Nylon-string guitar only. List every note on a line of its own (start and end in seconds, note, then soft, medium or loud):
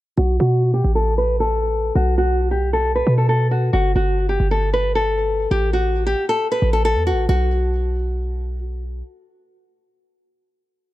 0.17 0.35 F#4 loud
0.40 0.71 F#4 medium
0.74 0.91 G4 medium
0.95 1.13 A4 medium
1.18 1.35 B4 medium
1.40 1.92 A4 medium
1.95 2.13 F#4 loud
2.18 2.49 F#4 medium
2.51 2.69 G4 medium
2.73 2.91 A4 medium
2.95 3.13 B4 medium
3.18 3.27 A4 medium
3.29 3.46 A4 medium
3.51 3.69 F#4 medium
3.73 3.91 F#4 loud
3.96 4.27 F#4 medium
4.29 4.47 G4 medium
4.51 4.69 A4 medium
4.73 4.91 B4 medium
4.95 5.48 A4 medium
5.51 5.69 G4 loud
5.73 6.05 F#4 medium
6.06 6.24 G4 medium
6.29 6.47 A4 medium
6.52 6.69 B4 medium
6.73 6.82 A4 medium
6.85 7.02 A4 medium
7.07 7.24 F#4 medium
7.29 8.58 F#4 medium